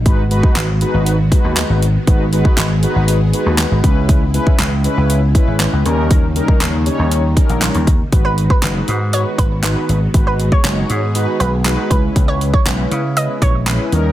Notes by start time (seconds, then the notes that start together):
0.05 G#1 D#3 G#3 B3 D#4 F#4 B4, kick, closed hi-hat
0.31 G#3 D#4 F#4 B4, closed hi-hat
0.43 kick
0.55 G#1, snare, clap, closed hi-hat
0.81 G#3 D#4 F#4 B4, closed hi-hat
0.94 G#1
1.06 closed hi-hat
1.32 G#3 D#4 F#4 B4, kick, closed hi-hat
1.44 D#2
1.56 snare, clap, closed hi-hat
1.70 G#1
1.82 closed hi-hat
2.07 G#1 G#3 D#4 F#4 G#4 B4, kick, closed hi-hat
2.32 G#3 D#4 F#4 B4, closed hi-hat
2.45 kick
2.57 G#1, snare, clap, closed hi-hat
2.83 G#3 D#4 F#4 B4, closed hi-hat
2.96 G#1
3.08 closed hi-hat
3.33 G#3 D#4 F#4 B4, closed hi-hat
3.46 D#2
3.58 snare, clap, closed hi-hat
3.71 G#1
3.83 C#2 C#3 G#3 C#4 E4 B4, kick, closed hi-hat
4.09 kick, closed hi-hat
4.34 G#3 C#4 E4 B4, closed hi-hat
4.47 kick
4.59 C#2, snare, clap, closed hi-hat
4.84 G#3 C#4 E4 B4, closed hi-hat
4.97 C#2
5.10 closed hi-hat
5.35 G#3 C#4 E4 B4, kick, closed hi-hat
5.48 G#1
5.59 snare, clap, closed hi-hat
5.73 C#2
5.85 D#2 G3 A#3 C#4 D#4 A#4, closed hi-hat
6.11 kick, closed hi-hat
6.36 G3 C#4 D#4 A#4, closed hi-hat
6.48 kick
6.61 D#2, snare, clap, closed hi-hat
6.86 G3 C#4 D#4 C#5, closed hi-hat
6.99 D#2
7.11 closed hi-hat
7.37 G3 C#4 D#4 A#4, kick, closed hi-hat
7.49 A#1, closed hi-hat
7.61 snare, clap, closed hi-hat
7.75 D#2, closed hi-hat
7.87 kick, closed hi-hat
8.12 G#1 D#3 G#3 B3 D#4 F#4 B4, kick, closed hi-hat
8.25 B4
8.38 closed hi-hat
8.50 B4, kick
8.62 F#1 G#3 D#4 F#4 B4, snare, clap, closed hi-hat
8.88 G#2, closed hi-hat
9.13 G#3 D#4 F#4 B4 C#5, closed hi-hat
9.38 G#1 B4, kick, closed hi-hat
9.63 G#3 D#4 F#4 B4, snare, clap, closed hi-hat
9.89 G#1, closed hi-hat
10.14 G#1 G#3 D#4 F#4 G#4 B4, kick, closed hi-hat
10.27 B4
10.40 closed hi-hat
10.52 C#5, kick
10.64 F#1 G#3 D#4 F#4 C#5, snare, clap, closed hi-hat
10.90 G#2, closed hi-hat
11.15 G#3 D#4 F#4 B4, closed hi-hat
11.40 B1 B4, closed hi-hat
11.65 G#3 D#4 F#4 B4, snare, clap, closed hi-hat
11.90 C#2 C#3 G#3 C#4 E4 B4, kick, closed hi-hat
12.16 C#2, kick, closed hi-hat
12.28 C#5
12.41 closed hi-hat
12.54 C#5, kick
12.66 B1 G#3 C#4 E4 B4, snare, clap, closed hi-hat
12.91 C#3, closed hi-hat
13.17 G#3 C#4 E4 B4 D#5, closed hi-hat
13.42 A#1 C#5, kick, closed hi-hat
13.66 G#3 C#4 E4 B4, snare, clap, closed hi-hat
13.92 D#2 C#3 G3 A#3 C#4 D#4 A#4, closed hi-hat